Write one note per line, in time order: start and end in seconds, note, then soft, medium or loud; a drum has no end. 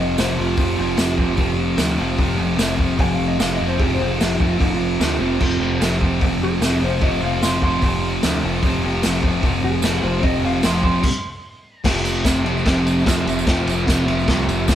0.00 0.16 F1 medium
0.00 0.17 F2 medium
0.00 0.17 C3 loud
0.00 0.19 F3 loud
0.00 0.18 D#5 medium
0.17 0.36 F1 loud
0.17 0.56 F2 medium
0.17 0.38 C3 medium
0.17 0.36 F3 medium
0.17 0.38 C5 medium
0.17 snare loud
0.17 open hi-hat medium
0.17 tambourine loud
0.37 0.57 F1 medium
0.37 0.56 C3 medium
0.37 0.59 F3 medium
0.37 0.59 F4 medium
0.56 0.76 F1 loud
0.56 0.97 F2 medium
0.56 0.79 C3 medium
0.56 0.76 F3 loud
0.56 kick loud
0.56 open hi-hat medium
0.60 1.76 F4 loud
0.77 0.97 F1 medium
0.77 0.98 C3 medium
0.77 0.99 F3 medium
0.97 1.16 F1 medium
0.97 1.37 F2 medium
0.97 1.20 C3 medium
0.97 1.18 F3 medium
0.97 snare loud
0.97 open hi-hat medium
0.97 tambourine loud
1.18 1.36 F1 loud
1.18 1.37 C3 medium
1.18 1.40 F3 medium
1.18 kick medium
1.37 1.75 F1 loud
1.37 1.77 F2 loud
1.37 1.78 C3 medium
1.37 1.80 F3 loud
1.37 kick loud
1.37 open hi-hat medium
1.77 1.96 D2 loud
1.77 2.17 F2 medium
1.77 2.01 C3 medium
1.77 1.98 F3 medium
1.77 snare loud
1.77 open hi-hat medium
1.77 tambourine loud
1.98 2.17 F1 medium
1.98 2.18 C3 medium
1.98 2.20 F3 medium
2.17 2.37 F1 medium
2.17 2.56 F2 medium
2.17 2.40 C3 loud
2.17 2.37 F3 loud
2.17 kick loud
2.17 open hi-hat medium
2.38 2.57 F1 medium
2.38 2.57 C3 medium
2.38 2.60 F3 medium
2.57 2.77 F1 medium
2.57 2.97 F2 medium
2.57 2.80 C3 medium
2.57 2.77 F3 loud
2.57 snare loud
2.57 open hi-hat medium
2.57 tambourine loud
2.78 2.97 F1 medium
2.78 2.98 C3 medium
2.78 3.00 F3 medium
2.78 kick medium
2.98 3.17 F1 loud
2.98 3.38 F2 loud
2.98 3.38 C3 loud
2.98 3.40 F3 loud
2.98 3.13 G#5 loud
2.98 kick loud
2.98 open hi-hat medium
3.13 3.26 F5 loud
3.19 3.37 F1 loud
3.28 3.40 D#5 medium
3.38 3.58 F1 medium
3.38 3.78 F2 medium
3.38 3.60 C3 medium
3.38 3.58 F3 medium
3.38 3.53 F5 loud
3.38 snare loud
3.38 open hi-hat medium
3.38 tambourine loud
3.55 3.81 F3 medium
3.55 3.67 D#5 medium
3.61 3.78 F1 medium
3.61 3.79 C3 medium
3.68 3.80 C5 medium
3.78 3.98 F1 loud
3.78 4.19 F2 medium
3.78 4.01 C3 loud
3.78 3.98 F3 medium
3.78 3.93 G#4 medium
3.78 kick loud
3.78 open hi-hat medium
3.94 4.07 C5 medium
3.98 4.18 F1 medium
3.98 4.19 C3 medium
3.98 4.22 F3 medium
4.07 4.20 G#4 medium
4.19 4.39 F1 medium
4.19 4.59 F2 medium
4.19 4.41 C3 medium
4.19 4.40 F3 medium
4.19 4.33 F4 medium
4.19 snare loud
4.19 open hi-hat medium
4.19 tambourine medium
4.35 4.47 D#4 loud
4.40 4.58 F1 medium
4.40 4.59 C3 medium
4.40 4.62 F3 medium
4.40 kick medium
4.47 4.59 F4 medium
4.59 4.96 F1 loud
4.59 5.00 F2 medium
4.59 5.00 C3 loud
4.59 5.02 F3 loud
4.59 4.73 D#4 medium
4.59 kick loud
4.59 open hi-hat medium
4.74 5.91 F4 loud
5.00 5.18 D2 loud
5.00 5.38 F2 medium
5.00 5.22 C3 medium
5.00 5.20 F3 medium
5.00 snare loud
5.00 open hi-hat medium
5.00 tambourine medium
5.20 5.38 F1 medium
5.20 5.39 C3 medium
5.20 5.41 F3 medium
5.39 5.59 F1 loud
5.39 5.80 F2 medium
5.39 5.61 C3 loud
5.39 5.59 F3 medium
5.39 kick loud
5.39 crash loud
5.59 5.79 F1 medium
5.59 5.81 C3 medium
5.59 5.82 F3 medium
5.80 5.99 F1 medium
5.80 6.20 F2 medium
5.80 6.03 C3 medium
5.80 6.00 F3 medium
5.80 snare loud
5.80 open hi-hat medium
5.80 tambourine loud
6.01 6.19 F1 medium
6.01 6.21 C3 medium
6.01 6.23 F3 medium
6.01 kick medium
6.20 6.39 F1 loud
6.20 6.60 F2 loud
6.20 6.61 C3 loud
6.20 6.64 F3 loud
6.20 kick loud
6.20 open hi-hat medium
6.41 6.59 F1 medium
6.41 6.81 G#4 loud
6.61 6.79 F1 medium
6.61 6.99 F2 medium
6.61 6.82 C3 medium
6.61 6.80 F3 medium
6.61 snare loud
6.61 open hi-hat medium
6.61 tambourine loud
6.80 7.00 F1 loud
6.80 7.00 C3 medium
6.80 7.03 F3 medium
6.84 7.03 C5 loud
7.00 7.20 F1 medium
7.00 7.41 F2 loud
7.00 7.23 C3 loud
7.00 7.21 F3 loud
7.00 7.22 D#5 loud
7.00 kick loud
7.00 open hi-hat medium
7.21 7.40 F1 medium
7.21 7.43 C3 medium
7.21 7.45 F3 medium
7.21 7.42 F5 loud
7.42 7.60 F1 medium
7.42 7.81 F2 medium
7.42 7.64 C3 medium
7.42 7.62 F3 medium
7.42 7.62 C6 loud
7.42 snare loud
7.42 open hi-hat medium
7.42 tambourine loud
7.62 7.80 F1 loud
7.62 7.82 C3 medium
7.62 7.84 F3 medium
7.62 8.80 C6 loud
7.62 kick medium
7.81 8.19 F1 loud
7.81 8.22 F2 loud
7.81 8.23 C3 loud
7.81 8.25 F3 loud
7.81 kick loud
7.81 open hi-hat medium
8.22 8.42 D2 loud
8.22 8.62 F2 medium
8.22 8.44 C3 medium
8.22 8.43 F3 medium
8.22 snare loud
8.22 open hi-hat medium
8.22 tambourine loud
8.43 8.61 F1 loud
8.43 8.63 C3 medium
8.43 8.66 F3 medium
8.63 8.81 F1 loud
8.63 9.03 F2 medium
8.63 8.85 C3 loud
8.63 8.83 F3 loud
8.63 kick loud
8.63 open hi-hat medium
8.84 9.01 F1 loud
8.84 9.04 C3 medium
8.84 9.05 F3 medium
9.03 9.22 F1 loud
9.03 9.41 F2 medium
9.03 9.25 C3 medium
9.03 9.23 F3 medium
9.03 snare loud
9.03 open hi-hat medium
9.03 tambourine loud
9.23 9.41 F1 medium
9.23 9.42 C3 medium
9.23 9.44 F3 medium
9.23 kick medium
9.42 9.61 F1 loud
9.42 9.81 F2 loud
9.42 9.83 C3 loud
9.42 9.84 F3 loud
9.42 kick loud
9.42 open hi-hat medium
9.63 9.81 F1 medium
9.63 10.03 G#4 loud
9.82 10.01 F1 loud
9.82 10.20 F2 medium
9.82 10.04 C3 medium
9.82 10.00 F3 medium
9.82 snare loud
9.82 open hi-hat medium
9.82 tambourine loud
10.01 10.21 F1 loud
10.01 10.22 C3 medium
10.01 10.23 F3 medium
10.01 10.23 C5 loud
10.21 10.42 F1 medium
10.21 10.62 F2 loud
10.21 10.44 C3 loud
10.21 10.41 F3 loud
10.21 10.43 D#5 loud
10.21 kick loud
10.21 open hi-hat medium
10.42 10.61 F1 medium
10.42 10.63 C3 medium
10.42 10.64 F3 medium
10.42 10.64 F5 medium
10.63 10.82 F1 medium
10.63 11.03 F2 medium
10.63 10.85 C3 medium
10.63 10.83 F3 medium
10.63 10.83 C6 loud
10.63 snare loud
10.63 open hi-hat medium
10.63 tambourine loud
10.83 11.02 F1 medium
10.83 11.04 C3 medium
10.83 11.03 F3 medium
10.83 11.82 C6 loud
10.83 kick medium
11.03 kick loud
11.03 crash loud
11.84 12.22 F1 loud
11.84 12.23 F2 loud
11.84 12.24 C3 loud
11.84 12.25 F3 loud
11.84 kick loud
11.84 snare loud
11.84 crash loud
11.96 tambourine soft
12.05 ride medium
12.05 tambourine medium
12.24 12.62 F1 medium
12.24 12.44 F2 medium
12.24 12.44 C3 medium
12.24 12.46 F3 medium
12.24 kick loud
12.24 snare loud
12.24 ride loud
12.24 tambourine loud
12.44 12.63 F2 medium
12.44 12.64 C3 medium
12.44 12.64 F3 loud
12.44 ride medium
12.57 tambourine soft
12.64 13.03 F1 loud
12.64 13.04 F2 loud
12.64 13.04 C3 loud
12.64 13.06 F3 loud
12.64 kick loud
12.64 snare loud
12.64 ride medium
12.64 tambourine soft
12.78 tambourine soft
12.87 ride medium
12.87 tambourine medium
12.99 tambourine soft
13.05 13.25 F2 medium
13.05 13.25 F2 loud
13.05 13.25 C3 medium
13.05 13.26 F3 medium
13.05 kick loud
13.05 snare loud
13.05 ride loud
13.05 tambourine loud
13.25 13.44 F1 loud
13.25 13.45 F2 medium
13.25 13.46 C3 loud
13.25 13.46 F3 loud
13.25 ride medium
13.25 tambourine medium
13.39 tambourine medium
13.46 13.65 F1 medium
13.46 13.86 F2 loud
13.46 13.87 C3 loud
13.46 13.87 F3 loud
13.46 kick loud
13.46 snare loud
13.46 ride loud
13.60 tambourine soft
13.66 13.85 F1 medium
13.66 ride medium
13.66 tambourine medium
13.87 14.06 F1 loud
13.87 14.05 F2 medium
13.87 14.06 C3 loud
13.87 14.06 F3 medium
13.87 kick loud
13.87 snare loud
13.87 ride loud
13.87 tambourine loud
14.07 14.26 F1 medium
14.07 14.25 F2 medium
14.07 14.27 C3 medium
14.07 14.27 F3 loud
14.07 ride medium
14.19 tambourine soft
14.27 14.46 C2 loud
14.27 14.66 F2 loud
14.27 14.67 C3 loud
14.27 14.68 F3 loud
14.27 kick loud
14.27 snare loud
14.27 ride loud
14.27 tambourine soft
14.39 tambourine soft
14.48 14.66 F1 medium
14.48 ride medium
14.48 tambourine medium
14.59 tambourine soft
14.68 14.75 F1 loud
14.68 14.75 F2 medium
14.68 14.75 C3 loud
14.68 14.75 F3 loud
14.68 kick loud
14.68 snare loud
14.68 ride loud
14.68 tambourine loud